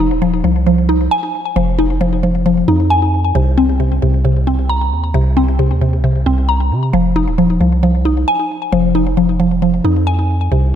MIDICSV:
0, 0, Header, 1, 3, 480
1, 0, Start_track
1, 0, Tempo, 447761
1, 1673, Time_signature, 4, 2, 24, 8
1, 11525, End_track
2, 0, Start_track
2, 0, Title_t, "Synth pluck"
2, 0, Program_c, 0, 84
2, 0, Note_on_c, 0, 53, 103
2, 0, Note_on_c, 0, 63, 89
2, 221, Note_off_c, 0, 53, 0
2, 233, Note_on_c, 0, 53, 87
2, 460, Note_off_c, 0, 53, 0
2, 473, Note_on_c, 0, 53, 81
2, 701, Note_off_c, 0, 53, 0
2, 713, Note_on_c, 0, 53, 88
2, 940, Note_off_c, 0, 63, 0
2, 953, Note_on_c, 0, 63, 87
2, 1194, Note_on_c, 0, 80, 106
2, 1661, Note_off_c, 0, 53, 0
2, 1674, Note_on_c, 0, 53, 99
2, 1902, Note_off_c, 0, 63, 0
2, 1914, Note_on_c, 0, 63, 80
2, 2140, Note_off_c, 0, 53, 0
2, 2153, Note_on_c, 0, 53, 90
2, 2381, Note_off_c, 0, 53, 0
2, 2393, Note_on_c, 0, 53, 82
2, 2622, Note_off_c, 0, 53, 0
2, 2634, Note_off_c, 0, 80, 0
2, 2635, Note_on_c, 0, 53, 86
2, 2861, Note_off_c, 0, 63, 0
2, 2874, Note_on_c, 0, 63, 86
2, 3113, Note_on_c, 0, 80, 92
2, 3593, Note_off_c, 0, 80, 0
2, 3593, Note_on_c, 0, 48, 98
2, 3594, Note_off_c, 0, 53, 0
2, 3594, Note_off_c, 0, 63, 0
2, 3833, Note_on_c, 0, 60, 87
2, 4059, Note_off_c, 0, 48, 0
2, 4072, Note_on_c, 0, 48, 84
2, 4300, Note_off_c, 0, 48, 0
2, 4313, Note_on_c, 0, 48, 83
2, 4540, Note_off_c, 0, 48, 0
2, 4553, Note_on_c, 0, 48, 91
2, 4781, Note_off_c, 0, 60, 0
2, 4793, Note_on_c, 0, 60, 83
2, 5033, Note_on_c, 0, 82, 96
2, 5501, Note_off_c, 0, 48, 0
2, 5514, Note_on_c, 0, 48, 105
2, 5741, Note_off_c, 0, 60, 0
2, 5754, Note_on_c, 0, 60, 90
2, 5981, Note_off_c, 0, 48, 0
2, 5994, Note_on_c, 0, 48, 90
2, 6220, Note_off_c, 0, 48, 0
2, 6233, Note_on_c, 0, 48, 81
2, 6461, Note_off_c, 0, 48, 0
2, 6473, Note_off_c, 0, 82, 0
2, 6474, Note_on_c, 0, 48, 89
2, 6701, Note_off_c, 0, 60, 0
2, 6714, Note_on_c, 0, 60, 90
2, 6953, Note_on_c, 0, 82, 93
2, 7433, Note_off_c, 0, 82, 0
2, 7433, Note_on_c, 0, 53, 104
2, 7434, Note_off_c, 0, 48, 0
2, 7434, Note_off_c, 0, 60, 0
2, 7674, Note_on_c, 0, 63, 89
2, 7901, Note_off_c, 0, 53, 0
2, 7914, Note_on_c, 0, 53, 89
2, 8141, Note_off_c, 0, 53, 0
2, 8154, Note_on_c, 0, 53, 79
2, 8381, Note_off_c, 0, 53, 0
2, 8394, Note_on_c, 0, 53, 89
2, 8620, Note_off_c, 0, 63, 0
2, 8633, Note_on_c, 0, 63, 85
2, 8874, Note_on_c, 0, 80, 105
2, 9340, Note_off_c, 0, 53, 0
2, 9353, Note_on_c, 0, 53, 104
2, 9581, Note_off_c, 0, 63, 0
2, 9594, Note_on_c, 0, 63, 84
2, 9820, Note_off_c, 0, 53, 0
2, 9833, Note_on_c, 0, 53, 89
2, 10060, Note_off_c, 0, 53, 0
2, 10073, Note_on_c, 0, 53, 82
2, 10302, Note_off_c, 0, 53, 0
2, 10314, Note_off_c, 0, 80, 0
2, 10315, Note_on_c, 0, 53, 86
2, 10542, Note_off_c, 0, 63, 0
2, 10554, Note_on_c, 0, 63, 89
2, 10794, Note_on_c, 0, 80, 96
2, 11274, Note_off_c, 0, 53, 0
2, 11274, Note_off_c, 0, 63, 0
2, 11274, Note_off_c, 0, 80, 0
2, 11274, Note_on_c, 0, 48, 94
2, 11525, Note_off_c, 0, 48, 0
2, 11525, End_track
3, 0, Start_track
3, 0, Title_t, "808-style bass"
3, 0, Program_c, 1, 38
3, 0, Note_on_c, 1, 29, 113
3, 113, Note_on_c, 1, 27, 101
3, 129, Note_off_c, 1, 29, 0
3, 455, Note_off_c, 1, 27, 0
3, 473, Note_on_c, 1, 36, 108
3, 1165, Note_off_c, 1, 36, 0
3, 1673, Note_on_c, 1, 29, 115
3, 2831, Note_off_c, 1, 29, 0
3, 2873, Note_on_c, 1, 41, 103
3, 3565, Note_off_c, 1, 41, 0
3, 3593, Note_on_c, 1, 36, 115
3, 4285, Note_off_c, 1, 36, 0
3, 4314, Note_on_c, 1, 36, 109
3, 5274, Note_on_c, 1, 39, 99
3, 5290, Note_off_c, 1, 36, 0
3, 5502, Note_off_c, 1, 39, 0
3, 5514, Note_on_c, 1, 36, 107
3, 6114, Note_on_c, 1, 39, 100
3, 6130, Note_off_c, 1, 36, 0
3, 6414, Note_on_c, 1, 36, 104
3, 6430, Note_off_c, 1, 39, 0
3, 6699, Note_off_c, 1, 36, 0
3, 6714, Note_on_c, 1, 36, 104
3, 7193, Note_on_c, 1, 48, 101
3, 7210, Note_off_c, 1, 36, 0
3, 7422, Note_off_c, 1, 48, 0
3, 7434, Note_on_c, 1, 29, 108
3, 7794, Note_on_c, 1, 27, 103
3, 7810, Note_off_c, 1, 29, 0
3, 8136, Note_off_c, 1, 27, 0
3, 8153, Note_on_c, 1, 36, 110
3, 8845, Note_off_c, 1, 36, 0
3, 9354, Note_on_c, 1, 29, 116
3, 10511, Note_off_c, 1, 29, 0
3, 10554, Note_on_c, 1, 41, 105
3, 11245, Note_off_c, 1, 41, 0
3, 11274, Note_on_c, 1, 36, 113
3, 11525, Note_off_c, 1, 36, 0
3, 11525, End_track
0, 0, End_of_file